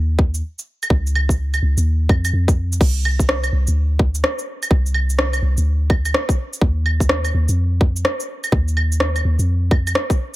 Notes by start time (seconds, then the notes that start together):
Already playing: D#2
0.19 kick
0.34 shaker
0.59 shaker
0.83 claves, shaker
0.90 C#2, kick
1.07 shaker
1.15 claves
1.29 kick, shaker
1.54 claves, shaker
1.62 C#2
1.77 D#2, shaker
2.09 F2, kick, claves
2.25 claves, shaker
2.33 F2
2.48 kick, shaker
2.72 shaker
2.81 C2, kick, crash
3.05 claves
3.19 kick, shaker
3.29 cross-stick
3.44 claves, shaker
3.53 C2
3.67 D2, shaker
3.99 kick
4.15 shaker
4.24 cross-stick
4.39 shaker
4.63 claves, shaker
4.71 C2, kick
4.86 shaker
4.94 claves
5.10 shaker
5.19 cross-stick
5.33 claves, shaker
5.42 C2
5.57 D2, shaker
5.90 kick, claves
6.05 claves, shaker
6.14 cross-stick
6.29 kick, shaker
6.53 shaker
6.61 D#2, kick
6.86 claves
7.00 kick, shaker
7.09 cross-stick
7.25 claves, shaker
7.34 D#2
7.48 F2, shaker
7.81 kick
7.96 shaker
8.05 cross-stick
8.20 shaker
8.44 claves, shaker
8.52 D#2, kick
8.68 shaker
8.77 claves
8.92 shaker
9.00 cross-stick
9.16 claves, shaker
9.25 D#2
9.39 F2, shaker
9.71 kick, claves
9.87 claves, shaker
9.95 cross-stick
10.10 kick, shaker